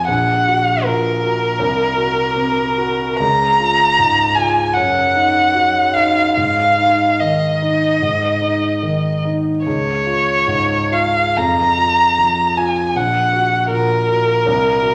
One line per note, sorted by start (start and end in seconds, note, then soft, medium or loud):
0.07 1.55 A#1 soft
0.07 0.86 F#5 medium
0.47 1.07 F#4 soft
0.84 1.44 A#2 soft
0.84 3.18 A#4 medium
1.23 1.59 F#4 soft
1.59 3.16 C2 soft
1.98 2.60 F#4 soft
2.36 3.03 C3 soft
2.78 3.20 F#4 soft
3.19 4.70 C#2 soft
3.19 4.37 A#5 medium
3.60 4.21 F4 soft
3.99 4.59 G#2 soft
4.35 4.75 F4 soft
4.35 4.75 G#5 medium
4.74 6.32 F#2 soft
4.74 5.95 F#5 medium
5.15 5.79 D#4 soft
5.55 6.19 F#3 soft
5.94 6.36 D#4 soft
5.94 6.34 F5 medium
6.35 7.98 G#2 soft
6.35 7.21 F5 medium
6.78 7.44 D#4 soft
7.19 7.86 D#3 soft
7.19 9.24 D#5 soft
7.62 8.02 D#4 soft
8.02 9.62 G#2 soft
8.42 9.07 D#4 soft
8.83 9.50 D#3 soft
9.25 9.66 D#4 soft
9.65 11.33 C#2 soft
9.65 10.94 C#5 medium
10.06 10.73 F4 soft
10.47 11.19 G#2 soft
10.91 11.37 F4 soft
10.91 11.38 F5 soft
11.37 12.92 F2 soft
11.37 12.59 A#5 medium
11.78 12.42 F4 soft
12.18 12.80 F3 soft
12.57 12.96 F4 soft
12.57 12.97 G#5 soft
12.95 14.42 A#1 soft
12.95 13.70 F#5 medium
13.33 13.93 F#4 soft
13.71 14.31 A#2 soft
13.71 14.95 A#4 medium
14.09 14.46 F#4 soft
14.46 14.95 C2 soft
14.82 14.95 F#4 soft